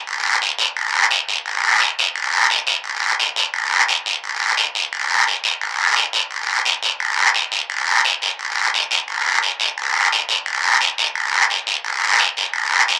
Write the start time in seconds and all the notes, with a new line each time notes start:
0.07 long guiro
0.42 short guiro
0.59 short guiro
0.77 long guiro
1.11 short guiro
1.29 short guiro
1.46 long guiro
1.81 short guiro
1.99 short guiro
2.16 long guiro
2.50 short guiro
2.67 short guiro
2.84 long guiro
3.20 short guiro
3.36 short guiro
3.54 long guiro
3.88 short guiro
4.06 short guiro
4.24 long guiro
4.57 short guiro
4.75 short guiro
4.93 long guiro
5.27 short guiro
5.44 short guiro
5.61 long guiro
5.96 short guiro
6.13 short guiro
6.31 long guiro
6.65 short guiro
6.83 short guiro
7.00 long guiro
7.35 short guiro
7.52 short guiro
7.70 long guiro
8.05 short guiro
8.22 short guiro
8.39 long guiro
8.74 short guiro
8.91 short guiro
9.08 long guiro
9.42 short guiro
9.60 short guiro
9.78 long guiro
10.12 short guiro
10.29 short guiro
10.46 long guiro
10.81 short guiro
10.98 short guiro
11.15 long guiro
11.50 short guiro
11.67 short guiro
11.85 long guiro
12.19 short guiro
12.37 short guiro
12.54 long guiro
12.88 short guiro